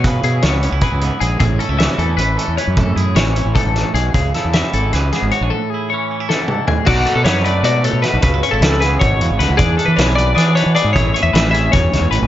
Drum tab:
CC |-------|-------|-------|-------|
HH |xxxxxxx|xxxxxxx|xxxxxxx|xxxxxxx|
SD |--o----|--o----|--o--o-|-oo-oo-|
T2 |-------|-------|-------|-------|
FT |-------|-------|-------|-------|
BD |o---o--|o------|o---o--|o------|

CC |-------|x------|-------|-------|
HH |-------|-xxxxxx|xxxxxxx|xxxxxxx|
SD |----o--|--o---o|--oo--o|--o-o--|
T2 |-----o-|-------|-------|-------|
FT |------o|-------|-------|-------|
BD |-------|o------|o---o--|o------|

CC |-------|
HH |xxxxxxx|
SD |--o-oo-|
T2 |-------|
FT |-------|
BD |o---o--|